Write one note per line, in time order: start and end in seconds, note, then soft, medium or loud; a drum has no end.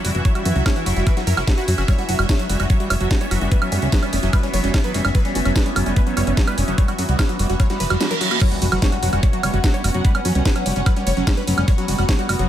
0.00 8.42 E3 medium
0.00 8.40 C#4 medium
0.00 1.90 E4 medium
0.00 8.41 F#4 medium
0.00 9.87 E5 medium
0.05 0.11 F#1 medium
0.05 0.13 G3 medium
0.05 0.09 F#4 medium
0.05 open hi-hat loud
0.15 0.21 F#1 medium
0.15 0.23 E3 loud
0.15 0.19 F#4 medium
0.15 closed hi-hat soft
0.25 0.33 F#3 medium
0.25 0.29 C#5 loud
0.25 kick loud
0.25 closed hi-hat medium
0.35 0.43 G3 medium
0.35 0.40 F#4 medium
0.35 closed hi-hat soft
0.35 high woodblock soft
0.45 0.52 F#2 medium
0.45 0.53 E3 loud
0.45 0.50 F#4 medium
0.45 open hi-hat loud
0.56 0.62 C#2 medium
0.56 0.64 F#3 medium
0.56 0.60 F#4 medium
0.56 closed hi-hat soft
0.66 0.74 G3 medium
0.66 0.70 C#5 loud
0.66 kick loud
0.66 snare loud
0.66 closed hi-hat medium
0.66 high woodblock medium
0.76 0.84 E3 loud
0.76 0.80 F#4 medium
0.76 closed hi-hat soft
0.86 0.93 F#1 medium
0.86 0.94 F#3 medium
0.86 0.91 F#4 medium
0.86 open hi-hat loud
0.96 1.03 F#1 medium
0.96 1.04 G3 medium
0.96 1.01 F#4 medium
0.96 closed hi-hat soft
1.07 1.15 E3 loud
1.07 1.11 B4 medium
1.07 kick loud
1.07 closed hi-hat medium
1.07 high woodblock soft
1.17 1.25 F#3 medium
1.17 1.21 F#4 medium
1.17 snare soft
1.17 closed hi-hat soft
1.27 1.33 F#2 medium
1.27 1.30 F#3 medium
1.27 1.31 A#4 loud
1.27 open hi-hat loud
1.37 1.44 F#1 medium
1.37 1.40 F#3 medium
1.37 1.42 F#4 medium
1.37 closed hi-hat soft
1.37 high woodblock medium
1.47 1.53 G3 loud
1.47 1.52 F#4 medium
1.47 kick loud
1.47 snare loud
1.47 closed hi-hat medium
1.58 1.66 F#4 medium
1.58 1.62 F#4 loud
1.58 closed hi-hat soft
1.68 1.74 F#2 medium
1.68 1.71 F#3 medium
1.68 1.72 F#4 medium
1.68 open hi-hat loud
1.78 1.84 F#1 medium
1.78 1.83 C#4 medium
1.78 1.82 F#4 medium
1.78 closed hi-hat soft
1.78 high woodblock soft
1.88 1.96 G3 medium
1.88 8.40 B3 medium
1.88 1.93 C#5 loud
1.88 kick loud
1.88 closed hi-hat medium
1.88 high woodblock soft
1.98 2.04 G3 medium
1.98 2.03 F#4 medium
1.98 closed hi-hat soft
2.09 2.15 F#1 loud
2.09 2.17 F#3 medium
2.09 2.13 F#4 medium
2.09 open hi-hat loud
2.19 2.25 F#1 medium
2.19 2.27 G3 medium
2.19 2.23 F#4 medium
2.19 closed hi-hat soft
2.19 high woodblock medium
2.29 2.34 G3 medium
2.29 2.33 C#5 loud
2.29 kick loud
2.29 snare loud
2.29 closed hi-hat medium
2.39 2.47 F#3 medium
2.39 2.44 F#4 medium
2.39 closed hi-hat soft
2.50 2.56 F#1 medium
2.50 2.58 G3 medium
2.50 2.54 F#4 medium
2.50 open hi-hat loud
2.60 2.66 F#1 medium
2.60 2.65 G3 medium
2.60 2.64 F#4 medium
2.60 closed hi-hat soft
2.60 high woodblock soft
2.70 2.78 F#3 medium
2.70 2.74 C#5 medium
2.70 kick loud
2.70 closed hi-hat medium
2.80 2.88 G3 medium
2.80 2.85 F#4 medium
2.80 closed hi-hat soft
2.90 2.97 F#1 medium
2.90 2.96 G3 medium
2.90 2.95 C#5 loud
2.90 open hi-hat loud
2.90 high woodblock medium
3.01 3.07 F#1 medium
3.01 3.09 F#3 medium
3.01 3.05 F#4 medium
3.01 closed hi-hat soft
3.11 3.19 G3 medium
3.11 3.15 F#4 medium
3.11 kick loud
3.11 snare loud
3.11 closed hi-hat medium
3.21 3.26 G3 medium
3.21 3.25 C#5 loud
3.21 closed hi-hat soft
3.31 3.38 F#1 loud
3.31 3.39 F#3 medium
3.31 3.36 F#4 medium
3.31 open hi-hat loud
3.31 high woodblock soft
3.41 3.48 F#1 medium
3.41 3.49 G3 medium
3.41 3.46 F#4 medium
3.52 3.57 G3 medium
3.52 3.56 B4 loud
3.52 kick loud
3.52 closed hi-hat medium
3.62 3.70 F#3 medium
3.62 3.66 C#4 medium
3.62 closed hi-hat soft
3.62 high woodblock medium
3.72 3.78 F#2 loud
3.72 3.80 G3 medium
3.72 3.76 C#4 medium
3.72 open hi-hat loud
3.82 3.89 C#2 medium
3.82 3.88 G3 medium
3.82 3.87 C#4 medium
3.82 closed hi-hat soft
3.92 4.00 F#3 medium
3.92 3.97 B4 medium
3.92 kick loud
3.92 snare loud
3.92 closed hi-hat medium
4.02 4.11 G3 medium
4.02 4.07 C#4 medium
4.02 closed hi-hat soft
4.02 high woodblock soft
4.13 4.19 F#1 medium
4.13 4.18 G3 medium
4.13 4.17 C#4 medium
4.13 open hi-hat loud
4.23 4.29 F#1 medium
4.23 4.31 F#3 medium
4.23 4.27 C#4 medium
4.23 closed hi-hat soft
4.33 4.41 G3 medium
4.33 4.38 B4 medium
4.33 kick loud
4.33 closed hi-hat medium
4.33 high woodblock medium
4.43 4.49 G3 medium
4.43 4.48 C#4 medium
4.43 closed hi-hat soft
4.54 4.60 F#1 medium
4.54 4.62 F#3 medium
4.54 4.58 C#5 medium
4.54 open hi-hat loud
4.64 4.70 F#1 medium
4.64 4.72 G3 medium
4.64 4.68 C#4 medium
4.64 closed hi-hat soft
4.74 4.79 G3 medium
4.74 4.78 C#4 medium
4.74 kick loud
4.74 snare loud
4.74 closed hi-hat medium
4.74 high woodblock soft
4.84 4.92 F#3 medium
4.84 4.89 B4 loud
4.84 closed hi-hat soft
4.94 5.01 F#1 loud
4.94 5.02 G3 medium
4.94 4.99 C#4 medium
4.94 open hi-hat loud
5.05 5.11 F#1 medium
5.05 5.10 G3 medium
5.05 5.09 C#4 medium
5.05 closed hi-hat soft
5.05 high woodblock medium
5.15 5.23 F#3 medium
5.15 5.19 B4 loud
5.15 kick loud
5.15 closed hi-hat medium
5.25 5.33 G3 medium
5.25 5.29 C#4 medium
5.25 closed hi-hat soft
5.35 5.42 F#1 loud
5.35 5.41 G3 medium
5.35 5.40 C#4 medium
5.35 open hi-hat loud
5.45 5.52 F#1 medium
5.45 5.53 F#3 medium
5.45 5.50 C#4 medium
5.45 closed hi-hat soft
5.45 high woodblock soft
5.56 5.64 G3 medium
5.56 5.60 B4 loud
5.56 kick loud
5.56 snare loud
5.56 closed hi-hat medium
5.66 5.71 G3 medium
5.66 5.70 C#4 medium
5.66 closed hi-hat soft
5.76 5.82 F#1 medium
5.76 5.84 F#3 medium
5.76 5.80 C#4 medium
5.76 open hi-hat loud
5.76 high woodblock medium
5.86 5.93 F#1 medium
5.86 5.94 G3 medium
5.86 5.91 C#4 medium
5.86 closed hi-hat soft
5.96 6.02 G3 medium
5.96 6.01 B4 medium
5.96 kick loud
5.96 closed hi-hat medium
6.07 6.15 F#3 medium
6.07 6.11 C#4 medium
6.07 closed hi-hat soft
6.17 6.23 F#1 medium
6.17 6.25 G3 medium
6.17 6.21 C#5 medium
6.17 open hi-hat loud
6.17 high woodblock soft
6.27 6.33 F#1 medium
6.27 6.32 G3 medium
6.27 6.31 C#4 medium
6.27 closed hi-hat soft
6.37 6.45 F#3 medium
6.37 6.42 C#4 medium
6.37 kick loud
6.37 snare loud
6.37 closed hi-hat medium
6.47 6.56 G3 medium
6.47 6.52 B4 medium
6.47 closed hi-hat soft
6.47 high woodblock medium
6.58 6.64 F#1 loud
6.58 6.63 G3 medium
6.58 6.62 C#4 medium
6.58 open hi-hat loud
6.68 6.74 F#1 medium
6.68 6.76 F#3 medium
6.68 6.72 C#4 medium
6.68 closed hi-hat soft
6.78 6.86 G3 medium
6.78 6.82 C#5 loud
6.78 kick loud
6.78 closed hi-hat medium
6.88 6.94 G3 medium
6.88 6.93 F#4 medium
6.88 closed hi-hat soft
6.88 high woodblock soft
6.98 7.05 F#2 medium
6.98 7.07 F#3 medium
6.98 7.03 F#4 medium
6.98 open hi-hat loud
7.09 7.15 C#2 medium
7.09 7.17 G3 medium
7.09 7.13 F#4 medium
7.09 closed hi-hat soft
7.19 7.24 G3 medium
7.19 7.23 C#5 loud
7.19 kick loud
7.19 snare loud
7.19 closed hi-hat medium
7.19 high woodblock medium
7.29 7.37 F#3 medium
7.29 7.33 F#4 medium
7.29 closed hi-hat soft
7.39 7.46 F#1 medium
7.39 7.47 G3 medium
7.39 7.44 F#4 medium
7.39 open hi-hat loud
7.49 7.56 F#1 medium
7.49 7.55 G3 medium
7.49 7.54 F#4 medium
7.49 closed hi-hat soft
7.60 7.68 F#3 medium
7.60 7.64 C#5 medium
7.60 kick loud
7.60 closed hi-hat medium
7.60 reverse cymbal medium
7.60 high woodblock soft
7.70 7.78 G3 medium
7.70 7.74 F#4 medium
7.70 snare soft
7.70 closed hi-hat soft
7.80 7.86 F#1 medium
7.80 7.83 F#3 medium
7.80 7.84 B4 loud
7.80 open hi-hat loud
7.90 7.97 F#1 medium
7.90 7.96 G3 loud
7.90 7.95 F#4 medium
7.90 closed hi-hat soft
7.90 high woodblock medium
8.01 8.06 G3 medium
8.01 8.05 F#4 medium
8.01 snare loud
8.01 closed hi-hat medium
8.11 8.14 F#3 medium
8.11 8.15 A#4 loud
8.11 closed hi-hat soft
8.21 8.29 F#3 loud
8.21 8.25 F#4 medium
8.21 open hi-hat loud
8.31 8.39 A#3 medium
8.31 8.36 F#4 medium
8.31 closed hi-hat soft
8.31 high woodblock soft
8.41 8.49 F#3 medium
8.41 12.49 B3 medium
8.41 12.49 C#4 medium
8.41 8.46 C#5 loud
8.41 kick loud
8.41 closed hi-hat medium
8.41 crash loud
8.41 impact medium
8.41 high woodblock soft
8.52 8.60 G3 medium
8.52 8.56 F#4 medium
8.52 closed hi-hat soft
8.56 12.49 F#4 medium
8.62 8.68 F#1 medium
8.62 8.67 G3 medium
8.62 8.66 F#4 medium
8.62 open hi-hat loud
8.72 8.78 F#1 medium
8.72 8.80 F#3 medium
8.72 8.76 F#4 medium
8.72 closed hi-hat soft
8.72 high woodblock medium
8.82 8.90 G3 medium
8.82 8.87 C#5 medium
8.82 kick loud
8.82 snare loud
8.82 closed hi-hat medium
8.92 8.98 G3 medium
8.92 8.97 F#4 medium
8.92 closed hi-hat soft
9.03 9.09 F#1 medium
9.03 9.11 F#3 medium
9.03 9.07 F#4 medium
9.03 open hi-hat loud
9.10 9.19 F#1 medium
9.10 9.21 G3 medium
9.10 9.17 F#4 medium
9.10 12.49 F#5 medium
9.10 closed hi-hat soft
9.10 high woodblock soft
9.23 9.28 G3 medium
9.23 9.27 C#5 medium
9.23 kick loud
9.23 closed hi-hat medium
9.33 9.41 F#3 medium
9.33 9.38 F#4 medium
9.33 closed hi-hat soft
9.43 9.50 F#1 medium
9.43 9.51 G3 medium
9.43 9.48 C#5 loud
9.43 open hi-hat loud
9.43 high woodblock medium
9.54 9.60 F#1 medium
9.54 9.59 G3 medium
9.54 9.58 F#4 medium
9.54 closed hi-hat soft
9.64 9.72 F#3 medium
9.64 9.68 F#4 medium
9.64 kick loud
9.64 snare loud
9.64 closed hi-hat medium
9.74 9.82 G3 medium
9.74 9.78 C#5 loud
9.74 closed hi-hat soft
9.84 9.91 F#1 loud
9.84 9.90 G3 medium
9.84 9.89 F#4 medium
9.84 open hi-hat loud
9.84 high woodblock soft
9.94 10.01 F#1 medium
9.94 10.02 F#3 medium
9.94 9.99 F#4 medium
9.94 closed hi-hat soft
10.05 10.13 G3 medium
10.05 10.09 B4 loud
10.05 kick loud
10.05 closed hi-hat medium
10.15 10.20 G3 medium
10.15 10.19 C#4 medium
10.15 closed hi-hat soft
10.15 high woodblock medium
10.25 10.31 F#2 loud
10.25 10.33 F#3 medium
10.25 10.29 C#4 medium
10.25 open hi-hat loud
10.35 10.42 C#2 medium
10.35 10.43 G3 medium
10.35 10.40 C#4 medium
10.35 closed hi-hat soft
10.45 10.51 G3 medium
10.45 10.50 B4 loud
10.45 kick loud
10.45 snare loud
10.45 closed hi-hat medium
10.56 10.64 F#3 medium
10.56 10.60 C#4 medium
10.56 closed hi-hat soft
10.56 high woodblock soft
10.66 10.72 F#1 medium
10.66 10.74 G3 medium
10.66 10.70 C#4 medium
10.66 open hi-hat loud
10.76 10.82 F#1 medium
10.76 10.81 G3 medium
10.76 10.80 C#4 medium
10.76 closed hi-hat soft
10.86 10.94 F#3 medium
10.86 10.91 B4 medium
10.86 kick loud
10.86 closed hi-hat medium
10.86 high woodblock medium
10.96 11.05 G3 medium
10.96 11.01 C#4 medium
10.96 closed hi-hat soft
11.07 11.13 F#1 medium
11.07 11.12 G3 medium
11.07 11.11 C#5 loud
11.07 open hi-hat loud
11.17 11.23 F#1 medium
11.17 11.25 F#3 medium
11.17 11.21 C#4 medium
11.17 closed hi-hat soft
11.27 11.35 G3 medium
11.27 11.31 C#4 medium
11.27 kick loud
11.27 snare loud
11.27 closed hi-hat medium
11.27 high woodblock soft
11.37 11.43 G3 medium
11.37 11.42 B4 loud
11.37 closed hi-hat soft
11.47 11.54 F#1 loud
11.47 11.56 F#3 medium
11.47 11.52 C#4 medium
11.47 open hi-hat loud
11.58 11.64 F#1 medium
11.58 11.66 G3 medium
11.58 11.62 C#4 medium
11.58 closed hi-hat soft
11.58 high woodblock medium
11.68 11.73 G3 medium
11.68 11.72 C#5 loud
11.68 kick loud
11.68 closed hi-hat medium
11.78 11.86 F#3 medium
11.78 11.82 F#4 medium
11.78 closed hi-hat soft
11.88 11.95 F#1 loud
11.88 11.96 G3 medium
11.88 11.93 F#4 medium
11.88 open hi-hat loud
11.98 12.05 F#1 medium
11.98 12.04 G3 medium
11.98 12.03 F#4 medium
11.98 closed hi-hat soft
11.98 high woodblock soft
12.09 12.17 F#3 medium
12.09 12.13 C#5 loud
12.09 kick loud
12.09 snare loud
12.09 closed hi-hat medium
12.19 12.27 G3 medium
12.19 12.23 F#4 medium
12.19 closed hi-hat soft
12.29 12.35 F#1 medium
12.29 12.34 G3 medium
12.29 12.33 F#4 medium
12.29 open hi-hat loud
12.29 high woodblock medium
12.39 12.46 F#1 medium
12.39 12.47 F#3 medium
12.39 12.44 F#4 medium
12.39 closed hi-hat soft